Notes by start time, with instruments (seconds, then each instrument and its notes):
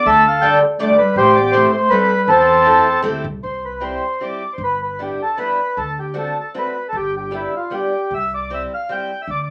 0.06 upright bass D2, clarinet A3, accordion A4 E5
0.27 clarinet D4, accordion F5
0.42 steel-string acoustic guitar G3 A3 D4 G4 A4, accordion G5
0.46 clarinet D4
0.79 steel-string acoustic guitar G3 A3 D4 G4 A4, clarinet A3, accordion D5
0.98 clarinet G3, accordion B4
1.16 upright bass A1, accordion G4 C5
1.20 clarinet A3
1.35 clarinet B3, accordion D5
1.52 steel-string acoustic guitar A3 C4 E4 G4 A4, clarinet A3, accordion C5
1.72 clarinet A3, accordion C5
1.90 clarinet G3, steel-string acoustic guitar A3 C4 E4 G4 A4, accordion B4
2.28 upright bass E2, clarinet E3, accordion C4 A4
2.65 steel-string acoustic guitar A3 C4 E4 G4 A4
3.02 upright bass D2, steel-string acoustic guitar A3 C4 E4 G4 A4
3.24 upright bass C2
3.43 upright bass C2, accordion C5
3.65 accordion B4
3.80 steel-string acoustic guitar G3 C4 E4 G4, accordion C5
4.20 steel-string acoustic guitar G3 C4 E4 G4, accordion D5
4.53 accordion C5
4.58 upright bass G1
4.64 accordion B4
4.82 accordion B4
4.99 steel-string acoustic guitar G3 B3 D4 E4, accordion G4
5.22 accordion A4
5.37 steel-string acoustic guitar G3 B3 D4 E4, accordion B4
5.77 upright bass D2, accordion A4
5.99 accordion G4
6.14 steel-string acoustic guitar A3 C4 D4 F#4
6.18 accordion A4
6.40 accordion A4
6.54 steel-string acoustic guitar A3 C4 D4 F#4
6.59 accordion B4
6.89 accordion A4
6.93 upright bass G1, accordion G4
7.17 accordion G4
7.31 steel-string acoustic guitar G3 B3 D4 G4
7.35 accordion E4
7.56 accordion F4
7.70 steel-string acoustic guitar G3 B3 D4 G4
7.74 accordion G4
8.11 upright bass C2, accordion E5
8.34 accordion D5
8.50 steel-string acoustic guitar G3 C4 E4 G4
8.54 accordion E5
8.74 accordion F5
8.89 steel-string acoustic guitar G3 C4 E4 G4, accordion G5
9.22 accordion E5
9.28 upright bass D2, accordion D5
9.43 accordion D5